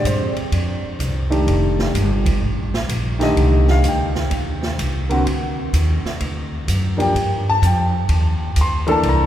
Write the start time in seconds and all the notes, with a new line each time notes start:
0.04 G2 C5, kick, hi-hat pedal, ride
0.20 F2
0.36 D2, ride
0.52 F2, kick, ride
0.83 muted upright bass stroke
0.99 C2, kick, hi-hat pedal, ride
1.30 D#3 A3 D4 G4, ride
1.47 F1, kick, ride
1.79 snare
1.95 G1, kick, hi-hat pedal, ride
2.26 kick, ride
2.42 A1, kick
2.74 snare
2.89 A#1, kick, hi-hat pedal, ride
3.19 D3 D#3 A3 G4, snare, ride
3.23 D#5
3.36 C2, kick, ride
3.68 F5, snare
3.84 D2, kick, hi-hat pedal, ride
3.88 G5
4.15 snare
4.31 D#2, kick, ride
4.63 snare
4.78 C2, kick, hi-hat pedal, ride
5.09 D3 A#3 C4 F#4, ride
5.25 D2, kick, ride
5.73 D#2, kick, hi-hat pedal, ride
6.04 muted upright bass stroke, snare
6.20 D2, kick, ride
6.68 F#2, kick, hi-hat pedal, ride
6.97 F3 A#3 D4 G4, ride
7.02 G5
7.14 G2, kick, ride
7.50 A5
7.62 F2, kick, hi-hat pedal, ride
7.66 G5
8.09 D#2, kick, ride
8.56 D2, kick, hi-hat pedal, ride
8.61 C6
8.87 E3 A#3 D4 A4, ride
8.92 A5
9.03 C2, kick, ride
9.09 A#5